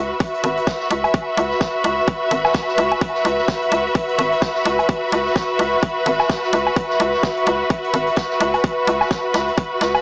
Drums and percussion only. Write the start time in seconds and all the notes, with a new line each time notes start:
0.20 kick, closed hi-hat
0.34 closed hi-hat
0.44 closed hi-hat
0.57 closed hi-hat
0.67 kick, snare, closed hi-hat
0.80 snare
0.90 closed hi-hat
1.04 closed hi-hat, low woodblock
1.14 kick, closed hi-hat
1.37 closed hi-hat
1.51 snare
1.60 kick, snare, closed hi-hat
1.84 closed hi-hat
2.07 kick, closed hi-hat
2.31 closed hi-hat
2.45 snare, low woodblock
2.54 kick, snare, closed hi-hat
2.68 snare
2.78 closed hi-hat
2.92 closed hi-hat, low woodblock
3.01 kick, closed hi-hat
3.15 snare
3.25 closed hi-hat
3.38 snare
3.48 kick, snare, closed hi-hat
3.62 closed hi-hat
3.72 closed hi-hat
3.95 kick, closed hi-hat
4.09 closed hi-hat
4.18 closed hi-hat
4.32 closed hi-hat
4.41 kick, snare, closed hi-hat
4.55 snare
4.65 closed hi-hat
4.79 closed hi-hat, low woodblock
4.89 kick, closed hi-hat
5.12 closed hi-hat
5.26 snare
5.36 kick, snare, closed hi-hat
5.59 closed hi-hat
5.83 kick, closed hi-hat
6.06 closed hi-hat
6.19 snare, low woodblock
6.30 kick, snare, closed hi-hat
6.43 snare
6.53 closed hi-hat
6.67 low woodblock
6.76 kick, closed hi-hat
6.90 snare
7.00 closed hi-hat
7.14 snare
7.23 kick, snare, closed hi-hat
7.37 closed hi-hat
7.46 closed hi-hat
7.70 kick, closed hi-hat
7.84 closed hi-hat
7.94 closed hi-hat
8.07 closed hi-hat
8.16 kick, snare, closed hi-hat
8.30 snare
8.40 closed hi-hat
8.54 closed hi-hat, low woodblock
8.64 kick, closed hi-hat
8.87 closed hi-hat
9.01 snare, low woodblock
9.11 kick, snare, closed hi-hat
9.34 snare, closed hi-hat
9.48 closed hi-hat
9.58 kick, closed hi-hat
9.81 snare, closed hi-hat
9.95 closed hi-hat, low woodblock